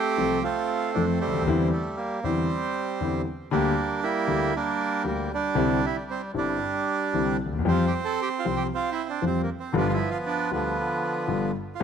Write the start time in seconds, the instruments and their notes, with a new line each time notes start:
Already playing: bandoneon A3 C4 G4
0.17 grand piano C2 C3 F3 A3 C4 A4
0.43 bandoneon A3 C4 F4
0.94 grand piano F2 F3 A3 C4 A4, bandoneon D4
1.21 bandoneon G3 C4
1.27 grand piano C#2
1.34 grand piano D2
1.41 grand piano D#2
1.47 grand piano E2 D3 E3 G3 C4 E4
1.73 bandoneon A3
1.97 bandoneon A#3
2.23 grand piano E2 D3 E3 G3 C4 E4, bandoneon G3 C4
3.00 grand piano E2 D3 E3 G3 C4 E4
3.51 grand piano D2 D3 G3 A#3 G4, bandoneon G3 A#3 D4
4.03 bandoneon G3 A#3 E4
4.27 grand piano D2 D3 G3 A#3 G4
4.55 bandoneon G3 A#3 D4
5.04 grand piano D2 D3 G3 A#3 G4, bandoneon A#3
5.34 bandoneon G3 D4
5.55 grand piano C2 C3 D3 G3 C4 E4
5.86 bandoneon E4
6.11 bandoneon C4
6.34 grand piano G1 G2 D3 G3 C4 E4, bandoneon G3
6.38 bandoneon D4
7.13 grand piano C2 C3 D3 G3 C4 E4
7.46 grand piano D2
7.53 grand piano D#2
7.59 grand piano E2
7.65 grand piano F2 F3 G3 C4 G4, bandoneon C4
7.70 bandoneon F4
7.87 bandoneon G4
8.05 bandoneon A4
8.22 bandoneon G4
8.39 bandoneon F4
8.45 grand piano C2 C3 F3 G3 C4 G4
8.56 bandoneon G4
8.74 bandoneon C4 F4
8.92 bandoneon E4
9.10 bandoneon D4
9.22 grand piano F2 F3 G3 C4 G4
9.26 bandoneon C4
9.43 bandoneon A#3
9.59 bandoneon C4
9.73 grand piano G1 G2 D3 G3 B3 F4
9.77 bandoneon F3 B3 D4
9.89 bandoneon E4 F4
10.11 bandoneon F4
10.27 bandoneon D4
10.51 grand piano D2 D3 G3 B3 F4, bandoneon D3 F3 B3
11.28 grand piano G1 G2 D3 G3 B3 F4
11.75 bandoneon F4
11.80 grand piano C2 E3 G3 C4